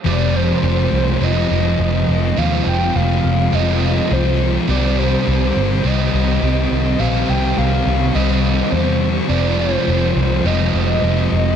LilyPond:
<<
  \new Staff \with { instrumentName = "Soft synth lead" } { \time 4/4 \key f \dorian \tempo 4 = 104 d''8 c''4. ees''2 | f''8 g''8 f''4 ees''4 c''8. r16 | d''8 c''4. ees''2 | f''8 g''8 f''4 ees''4 c''8. r16 |
d''8 c''4. ees''2 | }
  \new Staff \with { instrumentName = "Overdriven electric guitar" } { \clef bass \time 4/4 \key f \dorian <f, c f aes c' f'>2 <f, c f aes c' f'>2 | <f, c f aes c' f'>2 <f, c f aes c' f'>2 | <c ees g c' g'>2 <c ees g c' g'>2 | <c ees g c' g'>2 <c ees g c' g'>2 |
<f, c f aes c' f'>2 <f, c f aes c' f'>2 | }
  \new Staff \with { instrumentName = "Distorted electric guitar" } { \clef bass \time 4/4 \key f \dorian <f, c f>4 <f, c f>4 <f, c f>4 <f, c f>4 | <f, c f>4 <f, c f>4 <f, c f>4 <f, c f>4 | <c g c'>4 <c g c'>4 <c g c'>4 <c g c'>4 | <c g c'>4 <c g c'>4 <c g c'>4 <c g c'>4 |
<f, c f>4 <f, c f>4 <f, c f>4 <f, c f>4 | }
  \new Staff \with { instrumentName = "Picked electric bass" } { \clef bass \time 4/4 \key f \dorian f,,4 f,,8 c,8 f,,8 f,,8 f,,8 f,,8 | ees,8 f,,8 f,,8 f,,8 f,,4 c,4 | c,4 c,8 g,,8 c,8 c,8 c,8 c,8 | bes,,8 c,8 c,8 c,8 c,4 e,4 |
f,,4 f,,8 c,8 f,,8 f,,8 f,,8 f,,8 | }
>>